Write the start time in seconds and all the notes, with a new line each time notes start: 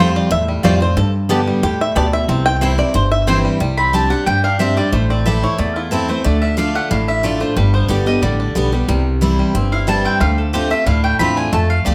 Already playing: F2 F3 F4
0.00 G3 C4 F4 C5
0.16 D5
0.31 E2 A2 E5
0.48 G3
0.63 F2 F3 G3 A3 C4 F4 C5 D5 G5
0.80 C4 F4 C5
0.97 G2 A4
1.29 D3 G3 B3 G4 D5 A5
1.47 G3
1.63 E2 A2 G4
1.81 E5
1.95 D2 B2 B3 G4 D5 A5
2.13 E5
2.28 C2 C3 C4
2.46 G5
2.61 E3 G3 C4 E4 C5 G5
2.78 C4 E4 D5
2.94 G1 G2 C5
3.12 E5
3.27 E3 G3 C4 E4 C5 G5
3.45 G3
3.60 C2 C3 G3
3.77 C4 B5
3.93 G3 C4 D4 G4 A5
4.10 D4 G4 F#5
4.26 G2 G3 G5
4.44 D4 F5
4.59 G3 C4 D4 G4 E5
4.77 G3 D4 G4 D5
4.92 A1 A2 A3 C5
5.10 C4 D5
5.26 E3 A3 C4 E4 G4 E5
5.43 E4 C#5
5.58 E2 A3 D5
5.76 E4 F4
5.91 E3 A3 C4 E4 A4
6.08 A3 C4 E4 C5
6.24 D2 D3 A3 D5
6.42 D4 E5
6.57 D3 A3 D4 F4 F5
6.75 A3 F#5
6.91 A1 A2 D4 F5
7.08 D4 E5
7.23 D3 A3 D4 F4 D5
7.40 D4 F4 C5
7.56 G1 G2 G3 B4
7.74 B3 C5
7.88 G1 D3 G3 B3 G4 D5
8.06 B3 D4 G4 D#5
8.22 A1 D3 G3 D5
8.40 D4
8.55 B1 D3 G3 B3 G4
8.72 G3 B3 G4
8.88 C2 C3 G3
9.21 E3 G3 C4 E4
9.39 G3
9.54 G1 G2 C4
9.72 E4 F5
9.87 E3 G3 C4 E4 A5
10.05 C4 G5
10.20 D2 D3 A3 F5
10.38 A4
10.53 D3 A3 C4 F4 G4 C5
10.70 A3 C4 F4 E5
10.86 D2 A2 D4 F5
11.04 A3 G5
11.19 E2 D3 A3 C4 F4 B5
11.37 D4 G#5
11.53 F2 A3 A5
11.70 F5
11.85 D2 F3 A3 C4 F4 G4 D5